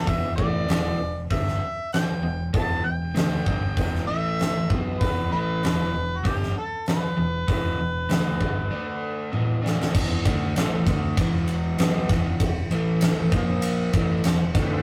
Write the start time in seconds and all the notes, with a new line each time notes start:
0.06 E1 E2 B2 E3 E5, kick, open hi-hat
0.36 A1 A2 E3 A3 D5, kick
0.67 E1 E2 B2 E3, snare, open hi-hat
0.99 E1 E2 B2
1.31 G1 G2 D3 G3 E5, kick, open hi-hat
1.47 snare
1.93 G5, snare, open hi-hat
2.22 E1 E2 B2
2.53 E1 E2 B2 E3 A5, kick, open hi-hat
2.84 E1 E2 B2 G5
3.15 D2 D3 A3 D4, snare, open hi-hat
3.46 G1 G2 D3 G3, kick
3.77 E1 E2 B2 E3, kick, open hi-hat
3.95 snare
4.07 A1 A2 E3 A3 E5
4.39 snare, open hi-hat
4.70 B1 B2 F#3 B3, kick
5.00 E1 E2 B2 E3 B4, kick, open hi-hat
5.31 A1 A2 E3 A3 B4
5.63 E1 E2 B2 E3, snare, open hi-hat
5.94 E1 E2 B2
6.17 F#4
6.23 G1 G2 D3 G3, kick, open hi-hat
6.28 G4
6.43 snare
6.58 A4
6.86 B4, snare, open hi-hat
7.17 E1 E2 B2
7.48 E1 E2 B2 E3, kick, open hi-hat
7.78 E1 E2 B2
8.09 D2 D3 A3 D4, snare, open hi-hat
8.40 G1 G2 D3 G3, kick
8.70 D3 A3 D4
9.32 E2 B2 E3, high tom
9.62 D3 A3 D4, snare
9.82 snare
9.93 E1 E2 B2 E3, kick, crash
10.24 D2 D3 A3 D4, kick, ride
10.55 A1 A2 E3 A3, snare, ride
10.87 D2 D3 A3 D4, kick, ride
11.17 E1 E2 B2 E3, kick, ride
11.47 ride
11.78 B1 B2 F#3 B3, snare, ride
12.09 E1 E2 B2 E3, kick, snare, ride
12.40 E1 E2 B2, kick, ride
12.71 A1 A2 E3 A3, ride
13.01 snare, ride
13.32 A#1 A#2 F3 A#3, kick, ride
13.62 ride
13.93 A1 A2 E3 A3, kick, ride
14.23 E1 E2 B2, snare, ride
14.54 D2 D3 A3 D4, kick, snare, ride
14.60 B3 C4
14.65 D4 E4
14.71 F4 G4
14.75 A4 B4